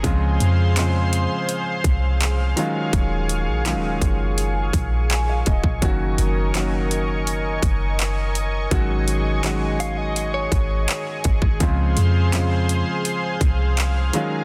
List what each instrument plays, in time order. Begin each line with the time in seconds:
Already playing: analog synth pad G#4
0.03 808-style bass C#2, grand piano C#3 F3 G#3 C4 F4, analog synth pad C5 F5 C6, kick, closed hi-hat
0.40 808-style bass F2, closed hi-hat
0.76 grand piano C#3 F3 G#3 C4 F4, clap, closed hi-hat
1.13 closed hi-hat
1.49 closed hi-hat
1.84 808-style bass C2, kick, closed hi-hat
2.21 clap, closed hi-hat
2.56 grand piano D#3 F#3 G#3 C#4 F4, analog synth pad G#4 G#5 C#6, closed hi-hat
2.93 808-style bass D#1, kick, closed hi-hat
3.29 closed hi-hat
3.48 808-style bass A#1
3.65 grand piano D#3 F#3 G#3 C#4 F4, clap, closed hi-hat
3.75 808-style bass D#1
4.01 808-style bass F#1, kick, closed hi-hat
4.38 closed hi-hat
4.73 808-style bass A#1, kick, closed hi-hat
5.10 grand piano G#5, clap, closed hi-hat
5.29 grand piano F5
5.46 808-style bass D#1, grand piano D#5, kick, closed hi-hat
5.64 808-style bass A#1, kick
5.82 808-style bass F#1, grand piano D#3 F#3 A#3 C#4 F#4, analog synth pad A#4 D#5, kick, closed hi-hat
6.18 808-style bass F#1, closed hi-hat
6.54 grand piano D#3 F#3 A#3 C#4 F#4, clap, closed hi-hat
6.91 closed hi-hat
7.27 closed hi-hat
7.62 808-style bass F#1, kick, closed hi-hat
7.99 clap, closed hi-hat
8.35 closed hi-hat
8.71 808-style bass G#1, grand piano D#3 F#3 G#3 C#4 F#4, analog synth pad G#4, kick, closed hi-hat
9.08 closed hi-hat
9.43 grand piano D#3 F#3 G#3 C#4 F#4, clap, closed hi-hat
9.80 clean electric guitar F5, closed hi-hat
9.98 clean electric guitar D#5
10.16 closed hi-hat
10.34 clean electric guitar C#5
10.52 808-style bass G#1, kick, closed hi-hat
10.88 clap, closed hi-hat
11.24 808-style bass G#1, kick, closed hi-hat
11.42 808-style bass G#1, kick
11.60 808-style bass C#2, grand piano C#3 F3 G#3 C4 F4, analog synth pad C5 F5 C6, kick, closed hi-hat
11.97 808-style bass F2, closed hi-hat
12.33 grand piano C#3 F3 G#3 C4 F4, clap, closed hi-hat
12.69 closed hi-hat
13.05 closed hi-hat
13.41 808-style bass C2, kick, closed hi-hat
13.77 clap, closed hi-hat
14.13 grand piano D#3 F#3 G#3 C#4 F4, analog synth pad G#5 A#5, closed hi-hat